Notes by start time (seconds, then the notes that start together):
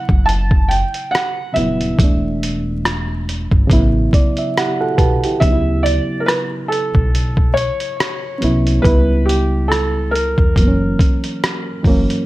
Already playing: C#3 F#3 B3 E4 F#5
0.09 F#1, kick
0.26 A5, closed hi-hat
0.51 kick
0.68 G5, closed hi-hat
0.94 closed hi-hat
1.11 F#5, cross-stick, closed hi-hat
1.53 D#1 C#3 F#3 E5, closed hi-hat
1.57 B3 E4
1.81 closed hi-hat
1.98 E1 B2 E3, kick, closed hi-hat
2.02 A3 D4
2.43 closed hi-hat
2.85 cross-stick, closed hi-hat
3.29 closed hi-hat
3.51 G1, kick
3.67 A1 C#3 F#3 B3, kick, closed hi-hat
3.73 E4
4.13 D5, kick, closed hi-hat
4.37 E5, closed hi-hat
4.57 E4 G4 F#5, cross-stick, closed hi-hat
4.81 F#4 A4 F#5
4.98 B1 G4 B4 A5, kick, closed hi-hat
5.24 E4 G4, closed hi-hat
5.40 D2 C#3 F#3 E5, kick, closed hi-hat
5.44 B3 D#4
5.52 E4
5.83 D5, closed hi-hat
6.20 A#4
6.26 B4, cross-stick, closed hi-hat
6.68 A4
6.72 closed hi-hat
6.95 B1, kick
7.15 closed hi-hat
7.37 kick
7.54 C#5, closed hi-hat
7.80 closed hi-hat
8.00 cross-stick, closed hi-hat
8.38 F#3 B3 C#4, closed hi-hat
8.43 C2 E4
8.67 closed hi-hat
8.80 C#3 G3 B3 B4
8.85 C#2 E4, kick, closed hi-hat
9.25 G4, closed hi-hat
9.68 A4, cross-stick
9.72 closed hi-hat
10.11 A#4
10.15 closed hi-hat
10.38 E2, kick
10.56 F#1 E3 F#3 A#3, kick, closed hi-hat
10.61 B3
10.68 C#4
10.99 kick, closed hi-hat
11.24 closed hi-hat
11.44 cross-stick, closed hi-hat
11.83 G1 E3 F#3, kick, open hi-hat
11.87 A#3 C#4
12.10 closed hi-hat